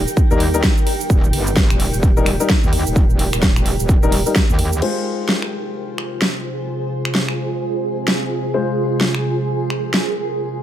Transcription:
Already playing: D#4 G4 A#4 G5
0.08 shaker
0.17 kick, shaker
0.31 D#2 G3 D#4 A#4, shaker
0.40 open hi-hat
0.54 G3 D#4 A#4, shaker
0.63 kick, snare, shaker
0.77 shaker
0.87 open hi-hat
1.01 shaker
1.10 D#1, kick, shaker
1.24 shaker
1.33 G1, open hi-hat
1.47 shaker
1.56 kick, snare, shaker
1.70 D#1, finger snap, shaker
1.80 open hi-hat
1.94 D#1, shaker
2.03 kick, shaker
2.17 G3 D#4 A#4, shaker
2.26 finger snap, open hi-hat
2.40 G3 D#4 A#4, shaker
2.49 kick, snare, shaker
2.63 D#2, shaker
2.73 open hi-hat
2.87 D#1, shaker
2.96 kick, shaker
3.10 shaker
3.19 open hi-hat
3.33 D#1, finger snap, shaker
3.42 kick, snare, shaker
3.56 finger snap, shaker
3.66 open hi-hat
3.80 D#1, shaker
3.89 kick, shaker
4.03 D#1 G3 D#4 A#4, shaker
4.12 open hi-hat
4.26 G3 D#4 A#4, shaker
4.35 kick, snare, shaker
4.49 D#2, shaker
4.59 open hi-hat
4.73 shaker
4.82 C3 G#3 F4 G#4 C5, crash
4.93 C5
5.05 G#4
5.29 snare
5.34 G#5
5.42 finger snap
5.98 finger snap
6.22 snare
7.05 finger snap
7.15 snare
7.29 finger snap
8.08 snare
8.54 G#3 F4 C5
9.01 snare
9.15 finger snap
9.31 A#4
9.70 finger snap
9.94 snare

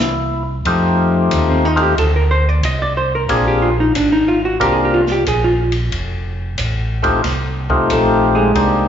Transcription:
Already playing: C2 E4
0.00 snare, closed hi-hat
0.65 F2 A3 C4 D#4 F4 G4, ride
1.31 D#2, hi-hat pedal, ride
1.50 C4
1.65 D#4
1.76 A3 C4 D#4 F4 G4, ride
1.82 G4
1.97 D2 A4, ride
2.16 A#4
2.31 C5
2.49 D5
2.63 C2 D#5, hi-hat pedal, ride
2.82 D5
2.97 C5
3.15 A#4
3.29 A#1 A#3 C4 D4 F4 G#4, ride
3.48 G4
3.62 F4
3.80 D#4
3.95 G#1 D4, hi-hat pedal, ride
4.12 D#4
4.28 F4
4.45 F#4
4.60 C2 A#3 C4 D4 F4 G4 A#4, ride
4.74 G#4
4.85 G4
4.94 F4
5.06 snare
5.11 G4
5.26 A#1 G#4, hi-hat pedal, ride
5.44 F4
5.72 ride
5.92 F1, ride
6.58 A1, hi-hat pedal, ride
7.03 A3 C4 D#4 F4 G4, kick, ride
7.24 C2, snare, ride
7.69 A3 C4 D#4 F4 G4, kick
7.89 A#1 A3 A4, hi-hat pedal, ride
8.35 G#3 G#4
8.55 C2 A#3 C4 D4 D#4 G4, ride

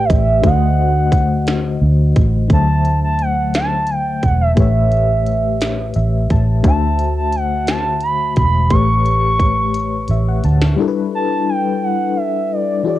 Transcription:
Already playing: A2 A3 G4 B4 D5
0.05 D#5
0.10 A1 E5, kick, closed hi-hat
0.42 D2 D3 A3 F#4 C5, kick, closed hi-hat
0.47 D#5 F#5
1.12 kick, closed hi-hat
1.47 snare, closed hi-hat
1.82 D2
2.16 A1, kick, closed hi-hat
2.48 D2 D3 F#3 A3, kick, closed hi-hat
2.52 C5 E5 A5
2.85 closed hi-hat
3.04 A5
3.19 F#5, closed hi-hat
3.54 A5, snare, closed hi-hat
3.87 G5, closed hi-hat
4.23 E1 F#5, kick, closed hi-hat
4.41 E5
4.55 A1 A2 A3 G4 B4, kick, closed hi-hat
4.60 C#5 E5
4.92 closed hi-hat
5.26 closed hi-hat
5.61 snare, closed hi-hat
5.94 A1 E5, closed hi-hat
6.30 A1 A5, kick, closed hi-hat
6.63 D2 D3 A3 F#4 A5, kick, closed hi-hat
6.67 C5 E5
6.99 closed hi-hat
7.17 A5
7.33 F#5, closed hi-hat
7.67 A5, snare, closed hi-hat
8.01 B5, closed hi-hat
8.36 E1 B5, kick, closed hi-hat
8.70 A1 A2 A3 G4 B4 C#6, kick, closed hi-hat
8.75 C#5
9.06 closed hi-hat
9.40 kick, closed hi-hat
9.74 closed hi-hat
10.08 A1 E5, closed hi-hat
10.28 F#5
10.44 D2 A5, closed hi-hat
10.62 snare
10.76 G3 D4 E4 A4
10.81 A#4
10.88 B4
11.15 A5
11.49 G5
11.83 F#5
12.16 E5
12.52 D5
12.83 E3 E4 F#4 G#4 D5
12.89 C#5
12.95 D5

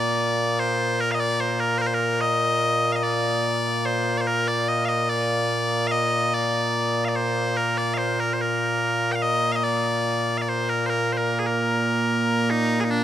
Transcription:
Already playing: A#2 A#3 D5
0.59 C5
1.00 A#4
1.11 D#5 F5
1.20 D5
1.40 C5
1.60 A#4
1.78 A#4 C5
1.86 C5
1.94 A#4
2.21 D#5
2.92 D#5 F5
3.03 D5
3.85 C5
4.17 C5 D5
4.27 A#4
4.48 D5
4.69 D#5
4.85 D#5 F5
5.10 D5
5.87 F5
5.92 D#5
6.34 D5
7.05 D5 F5
7.16 C5
7.57 A#4
7.77 D5
7.94 C5 F5
8.20 A#4
8.33 C5
8.41 A#4
9.12 F5 G5
9.22 D#5
9.52 D#5 F5
9.64 D5
10.38 D5 F5
10.49 C5
10.69 A#4
10.86 A#4 C5
11.12 C5
11.17 A#4
11.39 G#4
11.47 A#4
12.51 D#4
12.80 D#4 G#4
12.91 D4

